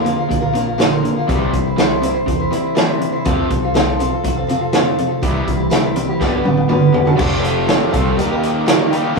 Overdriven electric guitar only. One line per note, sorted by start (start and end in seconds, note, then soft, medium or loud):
0.05 0.28 A#2 medium
0.05 0.28 D3 medium
0.29 0.52 A#2 medium
0.29 0.52 D3 medium
0.54 0.77 A#2 medium
0.54 0.78 D3 medium
0.78 1.01 A#2 medium
0.78 1.02 D3 medium
1.03 1.26 A#2 medium
1.03 1.26 D3 medium
1.27 1.51 C3 medium
1.27 1.52 E3 loud
1.27 1.52 G3 loud
1.53 1.76 C3 medium
1.53 1.75 E3 medium
1.77 2.00 C3 medium
1.77 2.00 E3 medium
2.02 2.25 C3 medium
2.02 2.25 E3 medium
2.26 2.49 C3 medium
2.26 2.49 E3 medium
2.51 2.74 C3 medium
2.51 2.74 E3 medium
2.76 2.98 C3 medium
2.76 2.99 E3 medium
3.00 3.23 C3 medium
3.00 3.23 E3 medium
3.27 3.50 F2 medium
3.27 3.50 C3 loud
3.27 3.50 F3 medium
3.51 3.73 F2 medium
3.51 3.73 C3 medium
3.75 3.98 F2 medium
3.75 3.98 C3 medium
4.00 4.22 F2 medium
4.00 4.23 C3 medium
4.24 4.46 F2 medium
4.24 4.47 C3 medium
4.50 4.72 F2 medium
4.50 4.72 C3 medium
4.75 4.97 F2 medium
4.75 4.97 C3 medium
4.99 5.21 F2 medium
4.99 5.21 C3 medium
5.23 5.46 C3 medium
5.23 5.46 E3 loud
5.23 5.47 G3 loud
5.47 5.70 C3 medium
5.47 5.70 E3 medium
5.72 5.94 C3 medium
5.72 5.95 E3 medium
5.97 6.19 C3 medium
5.97 6.19 E3 medium
6.20 6.43 G2 medium
6.20 6.44 D3 medium
6.20 6.44 G3 medium
6.44 6.67 G2 medium
6.44 6.68 D3 medium
6.68 6.91 G2 medium
6.68 6.91 D3 medium
6.93 7.16 G2 medium
6.93 7.16 D3 medium
7.16 7.91 F2 medium
7.16 7.91 C3 loud
7.16 7.91 F3 loud
7.16 7.92 A3 loud
7.16 7.92 C4 loud
7.16 7.91 F4 loud
7.93 8.18 F2 medium
7.93 8.16 C3 medium
7.93 8.17 F3 medium
7.93 8.17 A3 medium
7.93 8.17 C4 medium
7.93 8.17 F4 medium
8.16 8.90 D#3 medium
8.16 8.90 G3 medium
8.16 8.91 A#3 medium
8.16 8.91 D#4 medium
8.16 8.89 G4 medium
8.91 9.15 D#3 medium
8.91 9.15 G3 medium
8.91 9.15 A#3 medium
8.91 9.16 D#4 medium
8.91 9.15 G4 medium
9.14 9.19 A#2 medium
9.14 9.19 D3 medium
9.14 9.19 F3 loud
9.14 9.19 A#3 medium